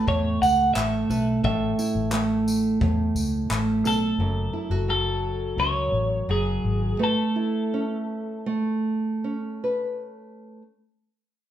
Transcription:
0.00 0.75 A3 medium
0.00 1.40 A3 medium
0.00 1.41 C#4 medium
0.00 1.42 E4 medium
0.00 1.78 E4 medium
0.00 1.10 A4 medium
0.00 1.42 C#5 medium
0.07 0.36 E2 medium
0.07 1.43 A2 medium
0.07 0.40 C#5 loud
0.07 kick loud
0.41 0.69 C#2 medium
0.41 0.73 F#5 loud
0.41 tambourine medium
0.74 1.04 A1 medium
0.74 2.12 A3 medium
0.74 1.40 E5 medium
0.74 clap loud
1.09 1.38 B1 medium
1.09 1.44 A4 medium
1.09 1.27 B4 medium
1.09 tambourine medium
1.44 1.73 A1 loud
1.44 2.80 A2 medium
1.44 3.85 A4 medium
1.44 2.44 E5 loud
1.44 kick loud
1.79 4.26 E4 medium
1.79 tambourine medium
1.95 2.77 A1 loud
2.12 3.49 A3 medium
2.12 clap loud
2.48 tambourine medium
2.81 3.10 E2 medium
2.81 4.19 A2 medium
2.81 kick loud
3.15 3.44 C#2 loud
3.15 tambourine medium
3.50 3.84 A1 medium
3.50 4.88 A3 medium
3.50 clap loud
3.84 4.12 B1 medium
3.84 6.99 A4 medium
3.84 4.89 A4 medium
3.84 tambourine medium
4.18 4.47 F#1 loud
4.18 5.57 F#2 medium
4.53 4.71 E4 medium
4.70 5.53 F#1 medium
4.70 7.06 F#4 medium
4.88 6.28 F#3 medium
4.88 5.59 A4 medium
5.57 5.86 C#2 medium
5.57 7.07 F#2 medium
5.57 6.30 C#5 loud
5.92 6.21 A1 loud
6.28 6.57 F#1 medium
6.28 6.99 F#3 medium
6.28 7.03 G#4 medium
6.64 6.93 G#1 medium
6.99 8.46 A3 medium
6.99 9.63 B4 medium
7.04 8.45 A4 medium
7.36 10.62 E4 medium
7.74 9.24 C#4 medium
8.46 10.62 A3 medium
9.24 10.62 C#4 medium
9.64 10.62 B4 medium

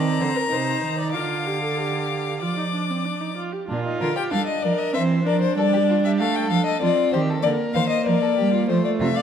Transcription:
0.00 0.20 D#3 medium
0.00 0.50 C4 medium
0.00 0.22 D5 medium
0.00 1.13 A#5 medium
0.21 0.29 D3 medium
0.21 0.38 C5 medium
0.37 0.54 A#4 medium
0.51 0.82 C3 medium
0.51 1.15 D#4 medium
0.51 0.98 C5 medium
0.83 1.16 D#3 medium
0.99 1.14 D5 medium
1.14 2.43 D3 medium
1.14 1.48 F4 medium
1.14 2.40 F5 medium
1.14 2.39 D6 medium
1.46 1.62 G4 medium
1.62 1.79 A4 medium
1.78 2.43 G4 medium
2.42 3.37 F3 medium
2.42 2.57 F4 medium
2.42 3.35 D5 medium
2.42 3.35 D6 medium
2.58 2.64 D#4 medium
2.73 2.91 D4 medium
2.90 3.07 C4 soft
3.05 3.22 D4 medium
3.20 3.36 D#4 medium
3.37 3.54 F4 medium
3.52 3.67 G4 medium
3.68 3.99 A#2 medium
3.68 3.84 D4 medium
3.68 4.33 F4 medium
3.85 4.01 D#4 medium
4.01 4.09 D3 medium
4.01 4.07 F4 medium
4.01 4.16 A#4 medium
4.16 4.31 G4 medium
4.16 4.23 G5 medium
4.31 4.40 G3 medium
4.31 4.95 D4 medium
4.31 4.40 A4 medium
4.31 4.46 F5 medium
4.47 4.64 D#5 medium
4.62 4.72 F3 medium
4.62 4.96 A#4 medium
4.62 4.80 D5 medium
4.79 4.93 D#5 medium
4.93 5.26 E3 medium
4.93 5.25 C4 medium
4.93 5.25 C5 medium
4.93 5.02 E5 medium
5.25 5.56 F3 medium
5.25 6.79 D4 medium
5.25 5.34 A#4 medium
5.25 5.41 D5 medium
5.42 5.57 C5 medium
5.57 6.21 G3 medium
5.57 5.64 A4 medium
5.57 6.03 D5 medium
5.73 5.79 G4 medium
5.89 5.95 F4 medium
6.05 6.22 G4 medium
6.05 6.11 E5 medium
6.20 6.50 A3 medium
6.20 6.82 A4 medium
6.20 6.37 F5 medium
6.36 6.50 G5 medium
6.50 6.58 F3 medium
6.50 6.66 F5 medium
6.66 6.81 D#5 medium
6.82 6.90 F3 medium
6.82 7.43 C4 medium
6.82 7.15 F4 medium
6.82 7.12 D5 medium
7.12 7.43 D#3 medium
7.12 7.31 G4 medium
7.12 7.21 C5 medium
7.29 7.46 A4 medium
7.43 7.52 D3 medium
7.43 8.71 A#3 medium
7.43 7.77 A#4 medium
7.43 7.51 D5 loud
7.74 7.83 D#3 medium
7.74 8.08 C5 medium
7.74 7.89 F5 medium
7.90 8.06 D#5 medium
8.06 8.14 F3 medium
8.06 8.23 A#4 medium
8.06 8.68 D5 medium
8.22 8.37 A4 medium
8.37 8.68 G3 medium
8.37 8.52 G4 medium
8.53 8.68 F4 medium
8.68 8.77 F3 medium
8.68 9.22 A3 medium
8.68 8.99 F4 medium
8.68 8.84 C5 medium
8.85 8.91 D5 medium
9.00 9.08 C3 medium
9.00 9.06 F4 medium
9.00 9.17 E5 medium
9.15 9.22 D5 medium
9.15 9.22 F5 medium

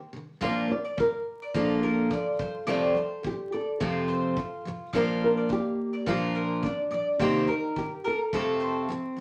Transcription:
0.13 0.36 C3 soft
0.13 0.38 D#3 soft
0.41 0.67 A#2 medium
0.41 0.70 F3 medium
0.41 0.70 A#3 medium
0.41 0.70 D4 medium
0.41 0.70 F4 medium
0.41 0.70 D5 medium
0.41 0.68 F5 medium
0.41 kick medium
0.68 0.92 A#2 soft
0.68 0.94 F3 soft
0.68 0.97 D5 medium
0.85 0.97 D5 medium
0.97 1.21 A#2 medium
0.97 1.22 F3 medium
0.97 1.56 A#4 medium
0.97 1.13 F5 medium
0.97 kick loud
1.42 1.54 D5 medium
1.54 2.09 A#2 medium
1.54 2.13 F3 medium
1.54 2.11 A#3 medium
1.54 2.12 D4 medium
1.54 2.68 F4 medium
1.54 1.82 A4 medium
1.54 kick medium
1.83 2.64 A4 medium
1.83 2.10 A#4 medium
2.10 2.34 A#2 medium
2.10 2.35 F3 medium
2.10 2.26 D5 medium
2.10 kick medium
2.39 2.62 F2 soft
2.39 2.63 C3 soft
2.39 2.64 F3 soft
2.39 2.54 C5 medium
2.39 kick medium
2.67 2.93 F2 medium
2.67 2.96 C3 medium
2.67 2.96 F3 medium
2.67 2.96 A3 medium
2.67 2.96 C4 medium
2.67 2.96 F4 medium
2.67 3.21 A4 medium
2.67 2.94 D5 medium
2.94 3.18 F2 soft
2.94 3.19 C3 soft
2.94 3.20 F3 soft
2.94 3.37 C5 medium
3.23 3.47 F2 soft
3.23 3.48 C3 medium
3.23 3.49 F3 medium
3.23 3.54 G4 medium
3.23 kick medium
3.52 3.81 A4 medium
3.52 3.67 D5 medium
3.80 4.35 F2 medium
3.80 4.37 C3 medium
3.80 4.39 F3 medium
3.80 4.37 A3 medium
3.80 4.38 C4 medium
3.80 4.96 F4 medium
3.80 4.62 A4 medium
3.80 kick loud
4.08 4.35 C5 medium
4.36 4.60 F2 medium
4.36 4.61 C3 medium
4.36 4.62 F3 medium
4.36 kick medium
4.65 4.89 F2 soft
4.65 4.89 C3 medium
4.65 4.90 F3 medium
4.93 5.48 A#2 medium
4.93 5.50 F3 medium
4.93 6.07 A#3 medium
4.93 5.51 D4 medium
4.93 5.51 F4 medium
4.93 5.23 A#4 medium
4.93 5.20 F5 medium
4.93 kick medium
5.24 5.52 A#4 medium
5.37 5.49 D5 medium
5.49 5.73 A#2 medium
5.49 5.75 F3 medium
5.49 6.09 G4 medium
5.49 5.64 F5 medium
5.49 kick medium
5.93 6.06 D5 medium
6.06 6.61 A#2 medium
6.06 6.63 F3 medium
6.06 6.63 A#3 medium
6.06 6.64 D4 medium
6.06 6.64 F4 medium
6.06 6.65 F4 medium
6.06 kick medium
6.35 6.62 A#4 medium
6.62 6.86 A#2 medium
6.62 6.88 F3 medium
6.62 7.21 D4 medium
6.62 6.78 D5 medium
6.62 kick medium
6.91 7.14 A#2 soft
6.91 7.16 F3 soft
6.91 7.06 D5 medium
7.20 7.46 C3 medium
7.20 7.48 D#3 medium
7.20 7.48 A#3 medium
7.20 7.49 C4 medium
7.20 7.78 D#4 medium
7.20 7.49 G4 medium
7.20 7.47 C5 medium
7.20 kick medium
7.47 7.71 C3 soft
7.47 7.72 D#3 soft
7.47 7.89 A#4 medium
7.76 7.99 C3 soft
7.76 8.00 D#3 medium
7.76 8.06 G4 medium
7.76 kick medium
8.04 8.86 A4 medium
8.04 8.19 A#4 medium
8.33 8.87 F2 medium
8.33 8.89 C3 medium
8.33 8.91 F3 medium
8.33 8.89 A3 medium
8.33 9.20 C4 medium
8.33 8.90 A4 medium
8.33 kick medium
8.60 8.87 C5 medium
8.89 9.12 F2 medium
8.89 9.13 C3 medium
8.89 9.13 F3 medium
9.16 9.20 F2 soft

